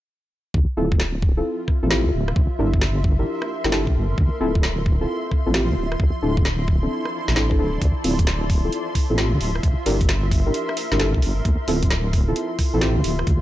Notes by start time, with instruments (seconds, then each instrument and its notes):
0.54 wobble bass D2, ambient pad F4, kick
0.65 ambient pad E5
0.77 wobble bass D1, synth stab C4 E4 F4 A4
0.92 kick
1.00 snare
1.22 kick
1.37 synth stab C4 E4 F4 A4, ambient pad C6
1.68 kick, cross-stick
1.83 wobble bass A1, synth stab C4 E4 F4 A4
1.90 synth stab C4 E4 F4 G4, snare
2.05 wobble bass D2
2.13 wobble bass D1
2.28 cross-stick
2.36 wobble bass C2, ambient pad A#4, kick
2.59 wobble bass G1, synth stab D4 E4 G4 A#4
2.74 kick
2.81 snare
3.04 kick
3.19 synth stab D4 E4 G4 A#4
3.42 cross-stick
3.64 wobble bass G1, synth stab D4 E4 G4 A#4, snare
3.72 synth stab D4 E4 G4 A4, snare
3.87 wobble bass C2, kick
3.95 wobble bass G1
4.18 wobble bass D2, ambient pad F4, kick
4.40 wobble bass D1, synth stab C4 E4 F4 A4
4.55 kick
4.63 snare
4.86 kick
5.01 synth stab C4 E4 F4 A4
5.32 kick, cross-stick
5.46 wobble bass A1, synth stab C4 E4 F4 A4
5.54 synth stab C4 E4 F4 G4, snare
5.69 wobble bass D2
5.77 wobble bass D1
5.92 cross-stick
5.99 wobble bass D2, ambient pad E4, kick
6.22 wobble bass D1, synth stab C4 D4 E4 A4, ambient pad A5
6.27 ambient pad D5
6.37 kick
6.45 snare
6.68 kick
6.83 synth stab C4 D4 E4 A4
7.05 cross-stick
7.28 wobble bass A1, snare
7.36 synth stab C4 D4 E4 A4, snare
7.51 synth stab C4 D4 E4 A4, kick
7.59 wobble bass D1, synth stab C4 D4 E4 A4
7.81 wobble bass D2, ambient pad F4, kick, closed hi-hat
7.91 ambient pad E5
8.04 wobble bass D1, synth stab C4 E4 F4 A4, open hi-hat
8.19 kick, closed hi-hat
8.27 snare, closed hi-hat
8.50 kick, open hi-hat
8.64 synth stab C4 E4 F4 A4
8.72 closed hi-hat
8.95 kick, cross-stick, open hi-hat
9.10 wobble bass A1, synth stab C4 E4 F4 A4
9.18 synth stab C4 E4 F4 G4, snare, closed hi-hat
9.33 wobble bass D2
9.40 wobble bass D1, open hi-hat
9.55 cross-stick
9.63 wobble bass C2, ambient pad A#4, kick, closed hi-hat
9.86 wobble bass G1, synth stab D4 E4 G4 A#4, open hi-hat
10.01 kick, closed hi-hat
10.09 snare, closed hi-hat
10.31 kick, open hi-hat
10.46 synth stab D4 E4 G4 A#4
10.54 closed hi-hat
10.69 cross-stick
10.77 open hi-hat
10.92 wobble bass G1, synth stab D4 E4 G4 A#4, snare
11.00 synth stab D4 E4 G4 A4, snare, closed hi-hat
11.14 wobble bass C2, kick
11.22 wobble bass G1, open hi-hat
11.45 wobble bass D2, ambient pad F4, kick, closed hi-hat
11.68 wobble bass D1, synth stab C4 E4 F4 A4, open hi-hat
11.83 kick, closed hi-hat
11.91 snare, closed hi-hat
12.13 kick, open hi-hat
12.28 synth stab C4 E4 F4 A4
12.36 closed hi-hat
12.59 kick, cross-stick, open hi-hat
12.74 wobble bass A1, synth stab C4 E4 F4 A4
12.81 synth stab C4 E4 F4 G4, snare, closed hi-hat
12.96 wobble bass D2
13.04 wobble bass D1, open hi-hat
13.19 cross-stick
13.27 wobble bass D2, kick, closed hi-hat